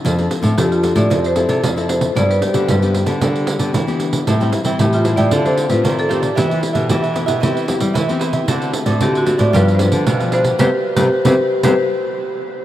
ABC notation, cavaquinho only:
X:1
M:4/4
L:1/16
Q:1/4=114
K:C
V:1 name="Cavaquinho"
z16 | z16 | [Aceg] [ceg] z [ceg]2 [ceg] [Aceg] [ceg] [FAcd] [Acd] z2 [FAcd] [Acd] [FAcd] [Acd] | [EGBe] [GBe] z [GBe]2 [GBe] [EGBe] [GBe] [EBce] [Bce] z2 [EBce] [Bce] [EBce] [Bce] |
[^FAcd] [Acd] z [Acd]2 [Acd] [FAcd] [Acd] [DGB=f] [GBf] z2 [DGBf] [GBf] [DGBf] [GBf] | [GBc] z2 [GBc] z [GBc] z2 [GBc] z6 z |]